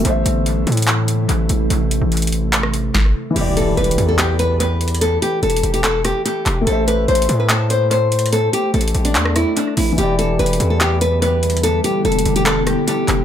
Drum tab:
CC |------------------------------------------------------------------------------------------------|------------------------------------------------------------------------------------------------|x-----------------------------------------------------------------------------------------------|------------------------------------------------------------------------------------------------|
HH |x-----------x-----------x-----------x--x--x--x--x-----------x-----------x-----------x-----------|x-----------x-----------x--x--x--x--x-----------x-----------x-----------------------------------|x-----------x-----------x---x---x---x-----------x-----------x-----------x-----------x---x---x---|x-----------x-----------x---x---x---x-----x-----x-----------x-----------x-----------x-----------|
CP |------------------------------------------------x-----------------------------------------------|------------------------------------------------x-----------------------------------------------|------------------------------------------------x-----------------------------------------------|------------------------------------------------x-----------------------------------x-----------|
SD |------------------------------------------------------------------------------------------------|------------------------------------------------------r-----------------o-----------------------|------------------------------------------------------------------------------------------------|------------------------------------------------------------r-----------------------------------|
BD |------------------------------------------------------------------------------------------------|------------------------------------------------------------------------o-----------------------|------------------------------------------------------------------------------------------------|------------------------------------------------------------------------------------------------|

CC |------------------------------------------------------------------------------------------------|------------------------------------------------------------------------------------------------|------------------------------------------------------------------------------------------------|------------------------------------------------------------------------------------------------|
HH |x-----------x-----------x---x---x---x-----------x-----------x-----------x-----------x---x---x---|x-----------x-----------x---x---x---x-----x-----x-----------x-----------x-----------o-----------|x-----------x-----------x---x---x---x-----------x-----------x-----------x-----------x---x---x---|x-----------x-----------x---x---x---x-----x-----x-----------x-----------x-----------x-----------|
CP |------------------------------------------------x-----------------------------------------------|------------------------------------------------x-----------------------------------------------|------------------------------------------------x-----------------------------------------------|------------------------------------------------x-----------------------------------x-----------|
SD |------------------------------------------------------------------------------------------------|------------------------------------------------------r-----r-----------------------------------|------------------------------------------------------------------------------------------------|------------------------------------------------------------r-----------------------------------|
BD |------------------------------------------------------------------------------------------------|------------------------------------------------------------------------------------------------|------------------------------------------------------------------------------------------------|------------------------------------------------------------------------------------------------|